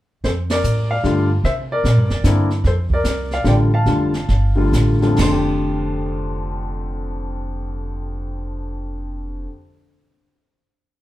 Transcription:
0.24 upright bass F2, grand piano A4 C5, brush sweep, kick, snare
0.50 grand piano A#4 D5, snare, ride
0.64 upright bass A2, hi-hat pedal
0.91 grand piano D5 F5
1.03 upright bass G2, grand piano D3 G3 A3 F4, kick, snare
1.44 upright bass C3, grand piano C5 E5, brush sweep, kick, snare
1.72 grand piano A#4 D5
1.84 upright bass A#2, kick, snare, hi-hat pedal
1.97 upright bass G2
2.10 upright bass E2, snare
2.24 upright bass G2, grand piano D3 A#3 C4 E4, kick, snare, hi-hat pedal
2.50 snare
2.64 upright bass F2, grand piano A4 C5, brush sweep, kick, snare
2.90 grand piano A#4 D5, kick
3.04 upright bass C2, kick, snare, hi-hat pedal
3.31 grand piano D5 F5, snare
3.44 upright bass A1, grand piano D3 G3 A3 F4 G5, kick, snare
3.48 grand piano D5
3.74 grand piano F5 A5
3.86 upright bass F1, grand piano D3 G3 A3 F4, brush sweep, kick, snare
4.14 snare
4.29 upright bass G1, kick, snare
4.55 grand piano D3 G3 A3 F4
4.73 upright bass A1, kick, snare, hi-hat pedal
5.01 grand piano D3 G3 A3 F4, snare
5.07 grand piano F2
5.15 upright bass F1, grand piano D3
5.19 grand piano C6, snare, floor tom, crash
5.23 grand piano A3
5.32 grand piano G4

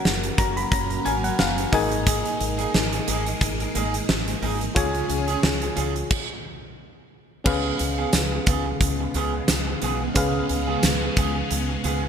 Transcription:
Already playing: string machine F#3 A#3 C#4, fm electric piano C#4 F#4 A#4 F#5
0.04 fretless electric bass F#1, muted clean electric guitar stroke, snare
0.23 muted clean electric guitar stroke, closed hi-hat
0.38 fretless electric bass F#1, clean electric guitar C#4 F#4 A#4, fm electric piano A#5, kick, closed hi-hat
0.57 fm electric piano B5, muted clean electric guitar stroke, closed hi-hat
0.72 fretless electric bass F#1, fm electric piano A#5, muted clean electric guitar stroke, kick, closed hi-hat
0.90 muted clean electric guitar stroke, closed hi-hat
1.05 fretless electric bass G#1, clean electric guitar C#4 F#4 A#4, fm electric piano G#5, closed hi-hat
1.23 clean electric guitar C#4 F#4 A#4, fm electric piano F#5, closed hi-hat
1.39 fretless electric bass F#1, fm electric piano F5, muted clean electric guitar stroke, snare
1.57 muted clean electric guitar stroke, closed hi-hat
1.72 fretless electric bass G#1, string machine G#3 D#4, clean electric guitar A#3 D#4 G#4, fm electric piano D#4 G#4 A#4 D#5 G#5, kick, open hi-hat
1.91 muted clean electric guitar stroke, closed hi-hat
2.06 clean electric guitar A#3 D#4 G#4, kick, closed hi-hat
2.25 closed hi-hat
2.40 fretless electric bass G#1, muted clean electric guitar stroke, closed hi-hat
2.58 clean electric guitar A#3 D#4 G#4, closed hi-hat
2.74 fretless electric bass G#1, muted clean electric guitar stroke, snare
2.92 muted clean electric guitar stroke, closed hi-hat
3.07 fretless electric bass G#1, clean electric guitar A#3 D#4 G#4, closed hi-hat
3.26 muted clean electric guitar stroke, closed hi-hat
3.41 fretless electric bass G#1, muted clean electric guitar stroke, kick, closed hi-hat
3.60 muted clean electric guitar stroke, closed hi-hat
3.75 fretless electric bass G#1, clean electric guitar A#3 D#4 G#4, closed hi-hat
3.94 muted clean electric guitar stroke, closed hi-hat
4.09 fretless electric bass G#1, muted clean electric guitar stroke, snare
4.27 muted clean electric guitar stroke, closed hi-hat
4.42 fretless electric bass G#1, clean electric guitar A#3 D#4 G#4, open hi-hat
4.60 muted clean electric guitar stroke, closed hi-hat
4.75 fretless electric bass C#2, string machine C#3 C#4 F4 G#4, clean electric guitar C#4 F4 G#4, fm electric piano F4 G#4 C#5 G#5, kick, closed hi-hat
4.95 closed hi-hat
5.09 fretless electric bass C#2, muted clean electric guitar stroke, closed hi-hat
5.28 clean electric guitar C#4 F4 G#4, closed hi-hat
5.43 fretless electric bass C#2, muted clean electric guitar stroke, snare
5.61 muted clean electric guitar stroke, closed hi-hat
5.76 fretless electric bass C#2, clean electric guitar C#4 F4 G#4, closed hi-hat
5.95 muted clean electric guitar stroke, closed hi-hat
6.11 kick, crash
7.44 fretless electric bass C#2, string machine C#3 G#3 B3 F5, clean electric guitar B3 F4 G#4, fm electric piano C#4 G#4 B4 F5, kick, crash
7.79 fretless electric bass C#2, muted clean electric guitar stroke, closed hi-hat
7.98 clean electric guitar B3 F4 G#4
8.13 fretless electric bass C#2, muted clean electric guitar stroke, snare, closed hi-hat, tambourine
8.32 muted clean electric guitar stroke
8.47 fretless electric bass C#2, clean electric guitar B3 F4 G#4, kick, closed hi-hat
8.66 muted clean electric guitar stroke
8.81 fretless electric bass C#2, muted clean electric guitar stroke, kick, closed hi-hat
9.01 muted clean electric guitar stroke
9.14 fretless electric bass C#2, clean electric guitar B3 F4 G#4, closed hi-hat
9.34 muted clean electric guitar stroke
9.48 fretless electric bass C#2, muted clean electric guitar stroke, snare, closed hi-hat, tambourine
9.67 muted clean electric guitar stroke
9.82 fretless electric bass B1, clean electric guitar B3 F4 G#4, closed hi-hat
10.01 muted clean electric guitar stroke
10.15 fretless electric bass C#2, clean electric guitar B3 F4 G#4, fm electric piano C#4 G#4 B4 F5, kick, closed hi-hat
10.49 fretless electric bass C#2, muted clean electric guitar stroke, closed hi-hat
10.67 clean electric guitar B3 F4 G#4
10.83 fretless electric bass C#2, muted clean electric guitar stroke, snare, closed hi-hat, tambourine
11.01 muted clean electric guitar stroke
11.16 fretless electric bass C#2, clean electric guitar B3 F4 G#4, kick, closed hi-hat
11.35 muted clean electric guitar stroke
11.51 fretless electric bass C#2, muted clean electric guitar stroke, closed hi-hat
11.69 muted clean electric guitar stroke
11.84 fretless electric bass C#2, clean electric guitar B3 F4 G#4, closed hi-hat
12.03 muted clean electric guitar stroke

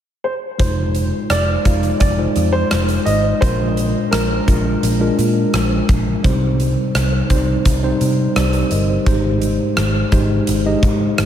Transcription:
0.24 grand piano C5
0.58 picked electric bass F1, tine electric piano G#3 D#4 F4 C5, grand piano C5, kick, closed hi-hat
0.95 closed hi-hat
1.30 picked electric bass F1, grand piano D5, cross-stick, closed hi-hat
1.65 picked electric bass F1, tine electric piano G#3 D#4 F4 F5, kick, closed hi-hat
1.83 closed hi-hat
2.00 picked electric bass F1, grand piano D5, kick, closed hi-hat
2.18 tine electric piano G#3 D#4 F4 C5
2.36 picked electric bass F2, closed hi-hat
2.53 grand piano C5
2.71 picked electric bass F1, cross-stick, closed hi-hat
2.89 closed hi-hat
3.05 picked electric bass G#1, grand piano D#5, closed hi-hat
3.41 picked electric bass A#1, tine electric piano A#2 G#3 D4 F4 A#4, grand piano C5, kick, closed hi-hat
3.77 closed hi-hat
4.11 picked electric bass A#1, grand piano A#4, cross-stick, closed hi-hat
4.46 picked electric bass A#1, tine electric piano G#3 D4 F4 A#4, kick, closed hi-hat
4.83 picked electric bass A#1, closed hi-hat
5.00 tine electric piano G#3 D4 F4 A#4
5.18 picked electric bass A#2, closed hi-hat
5.54 picked electric bass A#1, cross-stick, closed hi-hat
5.89 picked electric bass A#1, kick, closed hi-hat
6.23 picked electric bass C2, tine electric piano C3 G3 C4 D#4 C5, kick, closed hi-hat
6.60 closed hi-hat
6.95 picked electric bass C2, cross-stick, closed hi-hat
7.30 picked electric bass C2, tine electric piano G3 C4 D#4 C5, kick, closed hi-hat
7.65 picked electric bass C2, kick, closed hi-hat
7.83 tine electric piano G3 C4 D#4 C5
8.01 picked electric bass C3, closed hi-hat
8.36 picked electric bass C2, tine electric piano G4 D5, cross-stick, closed hi-hat
8.53 closed hi-hat
8.71 picked electric bass G1, tine electric piano A#4 D#5, closed hi-hat
8.89 tine electric piano G4 C5
9.06 picked electric bass G#1, tine electric piano G#2 G#3 D#4 G4 C5, kick, closed hi-hat
9.42 closed hi-hat
9.77 picked electric bass G#1, cross-stick, closed hi-hat
10.12 picked electric bass G#1, tine electric piano G#3 D#4 G4 C5, kick, closed hi-hat
10.47 picked electric bass G#1, closed hi-hat
10.65 tine electric piano G#3 D#4 G4 D#5
10.83 picked electric bass G#2, kick, closed hi-hat
11.18 picked electric bass G#1, cross-stick, closed hi-hat

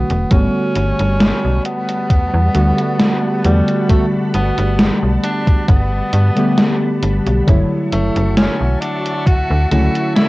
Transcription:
Already playing: synth keys D3 F#3 A3 C#4 F#4, tenor saxophone B3
0.10 fm bass E1, closed hi-hat
0.30 fm bass G1, synth keys D3 G3 A3 B3 F#4, string machine G3 F#5 A5 B5, tenor saxophone C#4, kick, closed hi-hat
0.75 fm bass G1, closed hi-hat
0.99 fm bass G1, closed hi-hat
1.20 snare, closed hi-hat
1.45 fm bass B1
1.65 tenor saxophone B3, closed hi-hat
1.89 closed hi-hat
2.10 fm bass E2, kick, closed hi-hat
2.34 fm bass E2
2.54 fm bass D2, synth keys D3 G3 A3 B3 F#4, closed hi-hat
2.79 closed hi-hat
3.00 snare, closed hi-hat
3.44 fm bass E2, synth keys D3 G3 A3 B3 F#4, tenor saxophone G3, closed hi-hat
3.68 closed hi-hat
3.88 synth keys D3 G3 A3 B3 F#4, tenor saxophone A3, kick, closed hi-hat
4.34 fm bass G1, tenor saxophone B3, closed hi-hat
4.58 fm bass G1, closed hi-hat
4.79 snare, closed hi-hat
5.03 fm bass B1
5.23 tenor saxophone D4, closed hi-hat
5.47 kick, closed hi-hat
5.68 fm bass G1, tenor saxophone B3, kick, closed hi-hat
6.13 fm bass G2, closed hi-hat
6.36 synth keys D3 G3 A3 B3 G4, closed hi-hat
6.58 snare, closed hi-hat
7.03 fm bass G1, closed hi-hat
7.26 fm bass B1, closed hi-hat
7.46 fm bass F#1, synth keys D3 F#3 A3 E4 C#5, string machine F#4 E5 A5 C#6, kick, closed hi-hat
7.92 fm bass F#1, tenor saxophone A3, closed hi-hat
8.16 fm bass F#1, closed hi-hat
8.37 tenor saxophone C#4, snare, closed hi-hat
8.61 fm bass B1
8.82 tenor saxophone D4, closed hi-hat
9.06 closed hi-hat
9.26 fm bass D2, tenor saxophone F#4, kick, closed hi-hat
9.50 fm bass D2
9.71 fm bass C#2, synth keys D3 F#3 A3 C#4 E4, tenor saxophone F#4, closed hi-hat
9.95 closed hi-hat
10.15 tenor saxophone E4, snare, closed hi-hat

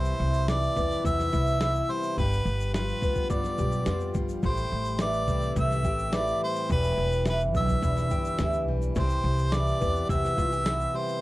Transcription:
Already playing: upright bass C2, twelve-string acoustic guitar C3 E3 G3 E4, harmonica C5
0.05 shaker
0.20 upright bass C2
0.33 shaker
0.48 twelve-string acoustic guitar E3, harmonica D5, snare, shaker
0.63 shaker
0.76 upright bass E2, twelve-string acoustic guitar B3, kick, shaker
0.91 shaker
1.04 upright bass E2, twelve-string acoustic guitar C3, harmonica E5, kick, shaker
1.20 snare, shaker
1.33 upright bass C2, twelve-string acoustic guitar E4, kick, shaker
1.47 shaker
1.60 twelve-string acoustic guitar E3, snare, shaker
1.75 shaker
1.89 twelve-string acoustic guitar G3, harmonica C5
2.03 shaker
2.18 upright bass G1, twelve-string acoustic guitar G2 G4, harmonica B4, kick, shaker
2.33 shaker
2.45 upright bass G1, shaker
2.60 shaker
2.74 twelve-string acoustic guitar F3, harmonica B4, snare, shaker
2.88 shaker
3.02 upright bass D2, twelve-string acoustic guitar B3, kick, shaker
3.15 kick, shaker
3.30 upright bass G1, twelve-string acoustic guitar G2, harmonica D5, kick, shaker
3.44 snare, shaker
3.58 upright bass B1, twelve-string acoustic guitar G4, kick, shaker
3.72 shaker
3.86 upright bass F2, twelve-string acoustic guitar F3, snare, shaker
4.00 shaker
4.14 upright bass G1, twelve-string acoustic guitar G3, kick, shaker
4.29 shaker
4.43 upright bass A1, twelve-string acoustic guitar A2 G4, harmonica C5, kick, shaker
4.57 shaker
4.72 upright bass A1
4.85 shaker
4.99 twelve-string acoustic guitar E3, harmonica D5, snare, shaker
5.13 shaker
5.28 upright bass C2, twelve-string acoustic guitar C4, kick, shaker
5.42 shaker
5.56 upright bass C2, twelve-string acoustic guitar A2, harmonica E5, kick, shaker
5.71 snare, shaker
5.84 upright bass A1, twelve-string acoustic guitar G4, kick, shaker
5.99 shaker
6.12 twelve-string acoustic guitar E3, harmonica D5, snare, shaker
6.27 shaker
6.41 twelve-string acoustic guitar G3, harmonica C5
6.55 shaker
6.70 upright bass E1, twelve-string acoustic guitar E2 G4, harmonica B4, kick, shaker
6.84 shaker
6.98 upright bass E1
7.12 shaker
7.25 twelve-string acoustic guitar E3, harmonica B4, snare, shaker
7.40 shaker
7.54 upright bass B1, twelve-string acoustic guitar D4, harmonica E5, kick, shaker
7.68 kick, shaker
7.82 upright bass E1, twelve-string acoustic guitar E2, kick, shaker
7.97 snare, shaker
8.10 upright bass G1, twelve-string acoustic guitar G4, kick, shaker
8.25 shaker
8.38 upright bass D2, twelve-string acoustic guitar E3, snare, shaker
8.53 shaker
8.68 upright bass B1, twelve-string acoustic guitar G3
8.82 shaker
8.95 upright bass C2, twelve-string acoustic guitar C3 G4, harmonica C5, kick, shaker
9.10 shaker
9.24 upright bass C2
9.38 shaker
9.52 twelve-string acoustic guitar E3, harmonica D5, snare, shaker
9.67 shaker
9.81 upright bass E2, twelve-string acoustic guitar B3, kick, shaker
9.96 shaker
10.09 upright bass E2, twelve-string acoustic guitar C3, harmonica E5, kick, shaker
10.25 snare, shaker
10.37 upright bass C2, twelve-string acoustic guitar F4, kick, shaker
10.52 twelve-string acoustic guitar G4, shaker
10.66 twelve-string acoustic guitar E3, snare, shaker
10.80 shaker
10.94 twelve-string acoustic guitar G3, harmonica C5
11.09 shaker

